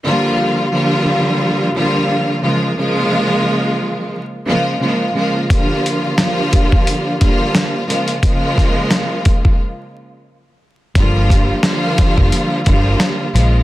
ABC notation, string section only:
X:1
M:4/4
L:1/8
Q:"Swing 16ths" 1/4=88
K:Gm
V:1 name="String section" clef=bass
[D,F,G,B,F]2 [D,F,G,B,F]3 [D,F,G,B,F]2 [_D,F,_A,B,F] | [_D,F,_A,B,F]4 z [D,F,A,B,F] [D,F,A,B,F] [D,F,A,B,F] | [D,F,G,B,F]2 [D,F,G,B,F]3 [D,F,G,B,F]2 [_D,F,_A,B,F] | [_D,F,_A,B,F]4 z4 |
[D,F,G,B,F]2 [D,F,G,B,F]3 [D,F,G,B,F]2 [_D,F,_A,B,F] |]